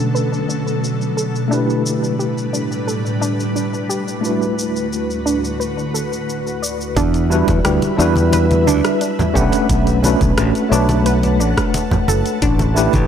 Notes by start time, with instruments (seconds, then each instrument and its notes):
Already playing: ambient pad B2 D3 F#3 A4, tine electric piano A3 C#4 D4 F#4 B4, synth pluck D4
0.15 synth pluck B4, shaker
0.33 shaker
0.49 synth pluck D4, shaker
0.68 shaker
0.84 shaker
1.01 shaker
1.17 synth pluck A4, shaker
1.36 shaker
1.48 ambient pad A2 G3 D4 B4, tine electric piano A3 D4 E4, synth pluck D4
1.52 tine electric piano G4 B4, shaker
1.70 shaker
1.86 shaker
2.04 shaker
2.19 synth pluck G4, shaker
2.38 shaker
2.53 synth pluck D4, shaker
2.72 shaker
2.87 synth pluck A4, shaker
3.06 shaker
3.21 synth pluck D4, shaker
3.40 shaker
3.56 synth pluck D4, shaker
3.74 shaker
3.89 synth pluck G4, shaker
4.08 shaker
4.21 ambient pad D2 D3 F#4 B4, tine electric piano A3 D4 E4, shaker
4.25 tine electric piano F#4 B4
4.42 shaker
4.59 shaker
4.76 shaker
4.93 shaker
5.10 shaker
5.26 synth pluck D4, shaker
5.44 shaker
5.60 synth pluck B4, shaker
5.79 shaker
5.94 synth pluck A4, shaker
6.13 shaker
6.30 shaker
6.47 shaker
6.62 synth pluck D5, shaker
6.81 shaker
6.96 fingered electric bass E2, synth pluck D4, ambient pad B4 E5, kick, closed hi-hat, muted conga, shaker
7.14 closed hi-hat, shaker
7.29 tine electric piano G3 D4 E4 F#4 B4, shaker
7.48 fingered electric bass E2, kick, closed hi-hat, muted conga, high conga, shaker
7.65 fingered electric bass D2, synth pluck G4, cross-stick, closed hi-hat, shaker
7.82 closed hi-hat, muted conga, shaker
7.96 fingered electric bass E2, tine electric piano G3 D4 E4, synth pluck D4, shaker
8.00 tine electric piano F#4 B4
8.16 closed hi-hat, high conga, shaker
8.33 synth pluck B4, closed hi-hat, muted conga, shaker
8.51 closed hi-hat, high conga, shaker
8.67 fingered electric bass D2, synth pluck D4, muted conga, high conga, shaker
8.85 cross-stick, closed hi-hat, shaker
9.01 synth pluck D4, closed hi-hat, shaker
9.19 muted conga, low conga, shaker
9.34 fingered electric bass B1, tine electric piano A3 C#4 D4 B4 F#5, synth pluck G4, kick, shaker
9.52 closed hi-hat, muted conga, shaker
9.69 fingered electric bass B1, ambient pad F#5 A5, kick, closed hi-hat, shaker
9.87 closed hi-hat, shaker
10.02 tine electric piano A3 C#4 D4 F#4 B4, muted conga, shaker
10.21 fingered electric bass B1, kick, closed hi-hat, high conga, shaker
10.37 fingered electric bass A1, cross-stick, closed hi-hat, muted conga, shaker
10.55 closed hi-hat, shaker
10.69 fingered electric bass B1, tine electric piano A3 D4 C#5, synth pluck D4, shaker
10.73 tine electric piano F#4 B4
10.89 closed hi-hat, muted conga, shaker
11.06 synth pluck B4, closed hi-hat, shaker
11.23 closed hi-hat, muted conga, shaker
11.40 fingered electric bass A1, synth pluck D4, shaker
11.57 kick, cross-stick, closed hi-hat, shaker
11.74 closed hi-hat, muted conga, shaker
11.91 kick, low conga, shaker
12.08 fingered electric bass F#1, synth pluck A4, muted conga, shaker
12.26 closed hi-hat, shaker
12.42 fingered electric bass A1, synth pluck D4, ambient pad G4 B4, kick, closed hi-hat, shaker
12.59 closed hi-hat, muted conga, shaker
12.74 tine electric piano A3 D4 E4 G4 B4, shaker
12.93 fingered electric bass A1, kick, closed hi-hat, muted conga, high conga, shaker